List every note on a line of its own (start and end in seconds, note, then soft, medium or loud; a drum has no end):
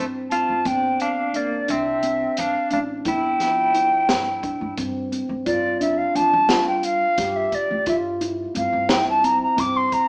0.00 0.40 G2 medium
0.00 0.16 C4 medium
0.30 0.51 C4 medium
0.30 0.67 F4 medium
0.30 0.68 A5 medium
0.30 closed hi-hat soft
0.49 0.63 G2 medium
0.65 1.50 G1 medium
0.65 1.04 C4 medium
0.65 1.00 D4 medium
0.65 1.03 G5 medium
0.65 kick medium
0.65 closed hi-hat medium
1.00 1.35 D4 medium
1.00 1.37 F5 medium
1.00 closed hi-hat soft
1.34 1.70 A#3 medium
1.34 1.54 D4 medium
1.34 1.71 D5 medium
1.34 closed hi-hat soft
1.68 2.25 C2 medium
1.68 2.39 C4 medium
1.68 1.88 D4 medium
1.68 2.39 E5 medium
1.68 closed hi-hat medium
2.03 2.41 C4 medium
2.03 closed hi-hat medium
2.37 2.52 G2 medium
2.37 2.72 D4 medium
2.37 2.71 F5 medium
2.37 closed hi-hat medium
2.71 3.00 A1 medium
2.71 2.90 D4 medium
2.71 2.82 D4 medium
2.71 2.80 F5 medium
2.71 closed hi-hat soft
3.05 3.90 G1 medium
3.05 3.25 E4 medium
3.05 4.75 E4 medium
3.05 4.74 G5 medium
3.05 kick medium
3.05 closed hi-hat medium
3.40 3.60 F3 medium
3.40 snare soft
3.40 closed hi-hat soft
3.74 4.13 E4 medium
3.74 closed hi-hat medium
4.09 4.51 G2 medium
4.09 snare medium
4.09 closed hi-hat medium
4.43 4.63 D4 medium
4.43 kick medium
4.43 closed hi-hat soft
4.61 4.75 G2 medium
4.77 5.20 G2 medium
4.77 4.97 C4 medium
4.77 kick medium
4.77 closed hi-hat medium
5.12 5.31 C4 medium
5.12 closed hi-hat medium
5.29 5.43 G2 medium
5.46 6.03 G2 medium
5.46 5.66 F4 medium
5.46 5.78 D5 medium
5.46 kick loud
5.46 closed hi-hat medium
5.81 6.00 D4 medium
5.81 5.99 E5 medium
5.81 closed hi-hat medium
5.98 6.17 F5 medium
6.15 6.29 F2 medium
6.15 6.34 D4 medium
6.15 6.67 A5 medium
6.15 closed hi-hat medium
6.33 7.03 G3 medium
6.49 6.88 F4 medium
6.49 snare loud
6.49 closed hi-hat medium
6.67 6.86 G5 medium
6.83 7.38 F5 medium
6.83 closed hi-hat medium
7.18 7.46 G2 medium
7.18 7.57 G4 medium
7.18 kick medium
7.18 snare soft
7.18 closed hi-hat medium
7.36 7.56 E5 medium
7.52 7.88 D5 medium
7.52 kick medium
7.52 closed hi-hat medium
7.71 7.84 D2 medium
7.86 8.43 G2 medium
7.86 8.06 F4 medium
7.86 7.96 E5 medium
7.86 kick medium
7.86 closed hi-hat medium
8.21 8.40 E4 medium
8.21 closed hi-hat medium
8.55 8.70 G2 medium
8.55 8.74 C4 medium
8.55 8.93 F5 medium
8.55 closed hi-hat medium
8.73 9.43 G2 medium
8.89 9.09 E4 medium
8.89 9.08 G5 medium
8.89 snare loud
8.89 closed hi-hat medium
9.10 9.26 A5 medium
9.24 9.43 C4 medium
9.24 9.42 A#5 medium
9.24 closed hi-hat medium
9.43 9.61 A#5 medium
9.57 9.86 G2 medium
9.57 9.96 C4 medium
9.57 9.78 D6 medium
9.57 kick medium
9.57 closed hi-hat medium
9.77 9.95 C6 medium
9.92 10.08 A#5 medium
9.92 kick medium
9.92 closed hi-hat medium